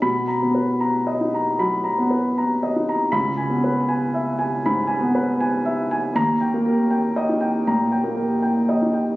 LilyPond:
<<
  \new Staff \with { instrumentName = "Upright piano" } { \time 4/4 \key b \major \tempo 4 = 79 \tuplet 3/2 { r8 ais''8 b'8 ais''8 dis''8 ais''8 b''8 ais''8 b'8 ais''8 dis''8 ais''8 } | \tuplet 3/2 { r8 gis''8 b'8 gis''8 e''8 gis''8 b''8 gis''8 b'8 gis''8 e''8 gis''8 } | \tuplet 3/2 { r8 g''8 ais'8 g''8 dis''8 g''8 ais''8 g''8 ais'8 g''8 dis''8 g''8 } | }
  \new Staff \with { instrumentName = "Upright piano" } { \time 4/4 \key b \major <b, b''>8 b4 dis'8 fis8 b4 dis'8 | <cis, b''>8 b4 r8 gis,8 b4 r8 | <dis, ais''>8 ais4 dis'8 ais,8 ais4 dis'8 | }
>>